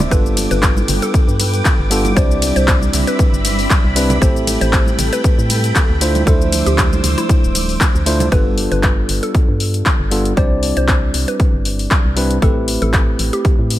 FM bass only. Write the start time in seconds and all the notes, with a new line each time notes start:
0.11 G1
0.51 G1
0.88 G1
1.28 G2
1.79 G1
2.17 C2
2.56 C2
2.93 C2
3.33 G1
3.84 C2
4.22 A1
4.61 A1
4.99 A1
5.38 A2
5.89 D2
6.27 D2
6.66 D2
7.04 D2
7.43 D1
7.95 D2
8.32 G1
8.72 G1
9.09 G1
9.49 G2
10.00 G1
10.37 C2
10.77 C2
11.14 C2
11.54 G1
12.05 C2
12.42 A1
12.82 A1
13.19 A1
13.59 A2